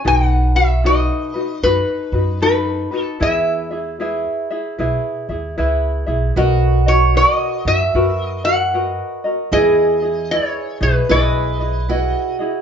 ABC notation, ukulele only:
X:1
M:4/4
L:1/8
Q:"Swing" 1/4=76
K:E
V:1 name="Ukulele"
[DFAB] [FB] [DFAB] [DFB] [DFAB] [DFB] [DFAB] [DFB] | [EGBe] [EGe] [EGBe] [EGe] [EGBe] [EGe] [EGBe] [EGe] | [K:B] [FABd] [FAd] [FABd] [FA] [FAB] [FAd] [FABd] [FAd] | [EGBd] [EGd] [EGBd] [EGd] [EGBd] [EGd] [EGBd] [EGd] |]